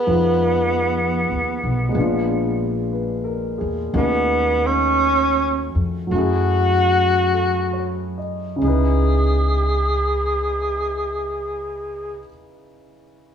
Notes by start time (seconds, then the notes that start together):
Already playing: B3 G#4
0.07 F2 F3 G#3 B3 D#4
0.11 F4
1.31 D#2
1.64 B1
1.89 A#2 G#3
1.95 A#1 B3 D4
2.00 F4
2.93 B4
3.24 A#4
3.58 E2 G#4
3.93 D#2 D#3 A3 B3 C#4 D#4 F#4
4.66 C#4
5.75 F2
6.07 F#3 A3
6.11 F#2 C#4 F#4
6.16 E4 G#4
7.33 A4
7.73 C#5
8.18 D#5
8.56 C#3 C#4
8.62 C#2 D#4 E4 G#4
8.68 B4